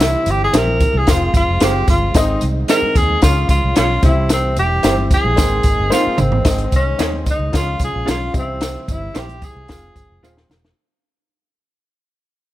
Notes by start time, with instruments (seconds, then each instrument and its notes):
Already playing: fingered electric bass C2, upright piano C3 C4 E4 G4 C5 E5, tonewheel organ E3 G3 C4 E4, tenor saxophone E4
0.00 snare, closed hi-hat, tambourine, muted conga
0.26 fingered electric bass G1, closed hi-hat, tambourine, high conga
0.30 tenor saxophone G4
0.44 tenor saxophone G#4
0.53 fingered electric bass A#1, upright piano C4 E4 G4 C5 E5, clean electric guitar E4 G4 C5, tenor saxophone A#4, snare, closed hi-hat, tambourine, muted conga
0.68 high conga
0.80 kick, closed hi-hat, tambourine, muted conga, low conga
0.94 fingered electric bass C2, tenor saxophone G#4, high conga
1.06 fingered electric bass F1, tonewheel organ F3 G#3 F4, upright piano C4 F4 G#4 C5 F5, tenor saxophone F4, kick, snare, closed hi-hat, tambourine, muted conga, low conga
1.34 fingered electric bass G1, tenor saxophone F4, kick, closed hi-hat, tambourine, muted conga
1.48 fingered electric bass F1
1.60 fingered electric bass F#1, upright piano C4 F4 G#4 C5 F5, clean electric guitar F4 G#4 C5, tenor saxophone G4, snare, closed hi-hat, tambourine, muted conga, high conga
1.88 fingered electric bass G1, tenor saxophone F4, kick, snare, closed hi-hat, tambourine, muted conga, high conga, low conga
2.14 fingered electric bass G#1, upright piano G#2 C4 D#4 G#4 C5 D#5, tonewheel organ D#3 C4 D#4, tenor saxophone D#4, kick, snare, closed hi-hat, tambourine
2.41 fingered electric bass C2, closed hi-hat, tambourine, high conga
2.68 upright piano C4 D#4 G#4 C5 D#5, clean electric guitar D#4 G#4 C5, tenor saxophone A#4, snare, closed hi-hat, tambourine, muted conga
2.82 muted fingered electric bass stroke, high conga
2.95 fingered electric bass D#2, tenor saxophone G#4, kick, closed hi-hat, tambourine, muted conga, low conga
3.09 high conga
3.22 fingered electric bass C#2, upright piano C#3 C#4 F4 G#4 C#5 F5, tonewheel organ F3 C#4 F4, tenor saxophone F4, kick, snare, closed hi-hat, tambourine, muted conga, low conga
3.49 fingered electric bass C#2, tenor saxophone F4, kick, closed hi-hat, tambourine, muted conga
3.64 fingered electric bass C2
3.76 fingered electric bass B1, upright piano C#4 F4 G#4 C#5 F5, clean electric guitar F4 G#4 C#5, tenor saxophone F4, snare, closed hi-hat, tambourine, high conga
4.02 fingered electric bass C2, upright piano C3 C4 E4 G4 C5 E5, tonewheel organ E3 G3 C4 E4, tenor saxophone E4, kick, snare, closed hi-hat, tambourine, muted conga, high conga, low conga
4.29 tenor saxophone C4, snare, closed hi-hat, tambourine, muted conga
4.56 fingered electric bass E1, tenor saxophone G4, closed hi-hat, tambourine, muted conga, high conga
4.83 fingered electric bass G1, upright piano C4 E4 G4 C5 E5, clean electric guitar E4 G4 C5, snare, closed hi-hat, tambourine, muted conga
4.98 high conga
5.11 tenor saxophone G#4, kick, closed hi-hat, tambourine, muted conga, low conga
5.24 fingered electric bass A#1, high conga
5.36 upright piano G#2 C4 D#4 G#4 A#4 C5, tonewheel organ G#3 A#3 D#4, kick, snare, closed hi-hat, tambourine, low conga
5.63 fingered electric bass G#1, kick, closed hi-hat, tambourine
5.79 fingered electric bass G1
5.90 upright piano C4 D#4 G#4 A#4 C5, clean electric guitar D#4 A#4 C5, tenor saxophone F4, snare, tambourine, high conga
6.07 muted fingered electric bass stroke
6.18 fingered electric bass G#1, tenor saxophone C4, mid tom, tambourine, high conga, low conga
6.32 floor tom
6.44 fingered electric bass G#1, upright piano G#2 C4 D#4 G#4 C5 D#5, tonewheel organ D#3 G#3 D#4 C5, kick, snare, closed hi-hat, tambourine, muted conga
6.58 closed hi-hat
6.72 fingered electric bass C2, kick, closed hi-hat, tambourine, muted conga, high conga
6.76 tenor saxophone C#4
6.85 high conga
6.98 fingered electric bass D#2, upright piano C4 D#4 G#4 C5 D#5, clean electric guitar D#4 G#4 C5, snare, closed hi-hat, tambourine, muted conga
7.13 high conga
7.26 tenor saxophone D#4, kick, closed hi-hat, tambourine, muted conga, low conga
7.39 fingered electric bass C#2, high conga
7.52 fingered electric bass C#2, upright piano C#3 C#4 F4 G#4 C#5 F5, tonewheel organ F3 G#3 C#4 F4, tenor saxophone F4, kick, snare, closed hi-hat, tambourine, muted conga, low conga
7.79 fingered electric bass C2, kick, closed hi-hat, tambourine, muted conga
7.84 tenor saxophone G#4
7.94 fingered electric bass A#1
8.05 fingered electric bass B1, upright piano C#4 F4 G#4 C#5 F5, clean electric guitar F4 G#4 C#5, snare, closed hi-hat, tambourine, high conga
8.10 tenor saxophone F4
8.33 fingered electric bass C2, upright piano C3 C4 E4 G4 C5 D#5, tonewheel organ E3 G3 C4 E4, kick, closed hi-hat, tambourine, muted conga, high conga, low conga
8.39 tenor saxophone C4, upright piano E5
8.61 snare, closed hi-hat, tambourine
8.88 fingered electric bass G1, tenor saxophone E4, kick, closed hi-hat, tambourine, muted conga, high conga
9.02 high conga
9.14 fingered electric bass A#1, upright piano C4 E4 G4 C5 E5, clean electric guitar E4 G4 C5, snare, closed hi-hat, tambourine
9.19 tenor saxophone G4
9.29 closed hi-hat, high conga
9.42 tenor saxophone G#4, kick, closed hi-hat, tambourine, muted conga, low conga
9.55 fingered electric bass C2, high conga
9.68 fingered electric bass F1, tonewheel organ F3 G#3 F4, upright piano C4 F4 G#4 C5 F5, kick, snare, closed hi-hat, tambourine, muted conga, low conga
9.96 fingered electric bass G1, kick, closed hi-hat, tambourine
10.10 fingered electric bass F1
10.23 fingered electric bass D#1, upright piano C4 F4 G#4 C5 F5, clean electric guitar F4 G#4 C5, snare, tambourine, muted conga, high conga
10.37 snare
10.50 fingered electric bass E1, snare, tambourine, high conga, low conga
10.65 snare